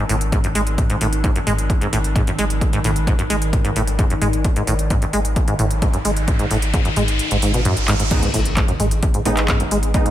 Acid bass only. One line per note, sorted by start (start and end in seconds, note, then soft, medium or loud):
0.09 0.16 A2 medium
0.32 0.39 G#2 medium
0.44 0.48 F#2 medium
0.55 0.62 G#3 medium
0.90 0.96 G#2 medium
1.01 1.07 A2 medium
1.24 1.30 G#2 medium
1.35 1.39 F#2 medium
1.47 1.53 G#3 medium
1.81 1.88 G#2 medium
1.93 1.99 A2 medium
2.16 2.22 G#2 medium
2.27 2.31 F#2 medium
2.39 2.45 G#3 medium
2.73 2.79 G#2 medium
2.84 2.91 A2 medium
3.07 3.14 G#2 medium
3.19 3.23 F#2 medium
3.30 3.36 G#3 medium
3.65 3.71 G#2 medium
3.76 3.82 A2 medium
3.99 4.05 G#2 medium
4.10 4.14 F#2 medium
4.22 4.28 G#3 medium
4.56 4.62 G#2 medium
4.67 4.74 A2 medium
4.90 4.97 G#2 medium
5.02 5.06 F#2 medium
5.13 5.20 G#3 medium
5.48 5.54 G#2 medium
5.59 5.66 A2 medium
5.82 5.88 G#2 medium
5.94 5.97 F#2 medium
6.05 6.11 G#3 medium
6.39 6.46 G#2 medium
6.51 6.57 A2 medium
6.74 6.80 G#2 medium
6.85 6.89 F#2 medium
6.97 7.03 G#3 medium
7.31 7.37 G#2 medium
7.43 7.52 G#2 medium
7.54 7.60 B2 medium
7.65 7.75 F#2 loud
7.88 7.95 G#2 loud
8.00 8.04 G#2 medium
8.23 8.29 G#2 medium
8.34 8.40 A2 medium
8.57 8.63 G#2 medium
8.69 8.72 F#2 medium
8.80 8.86 G#3 medium
9.14 9.21 G#2 medium
9.26 9.32 A2 medium
9.49 9.55 G#2 medium
9.60 9.64 F#2 medium
9.71 9.78 G#3 medium
10.06 10.11 G#2 medium